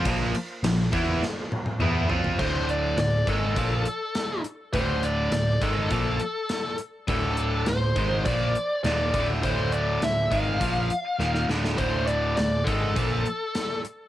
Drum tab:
CC |----------------|x---------------|----------------|----------------|
RD |x-x-x-x---------|----------------|----------------|----------------|
HH |----------------|--x-x-x-x-x-x-x-|x-x-x-x-x-x-x-x-|x-x-x-x-x-x-x-x-|
SD |----o---o-------|----o-------o---|----o-------o---|----o-------o---|
T1 |----------oo----|----------------|----------------|----------------|
T2 |------------o---|----------------|----------------|----------------|
FT |--------------oo|----------------|----------------|----------------|
BD |o-----o---------|o-----o-o-------|o-----o-o-------|o-----o-o-----o-|

CC |----------------|----------------|
RD |----------------|----------------|
HH |x-x-x-x-x-x-----|x-x-x-x-x-x-x-x-|
SD |----o-------oooo|----o-------o---|
T1 |----------------|----------------|
T2 |----------------|----------------|
FT |----------------|----------------|
BD |o-----o-o-------|o-----o-o-------|